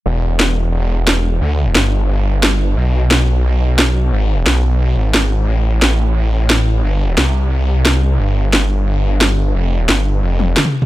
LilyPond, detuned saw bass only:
\new Staff \with { instrumentName = "Detuned saw bass" } { \clef bass \time 4/4 \key e \phrygian \tempo 4 = 177 e,,1 | d,4 g,,2. | b,,1 | gis,,4 b,,4. gis,,4. |
a,,1 | g,,4 c,2. | g,,1 | f,,4 g,,4 f,,4 r4 | }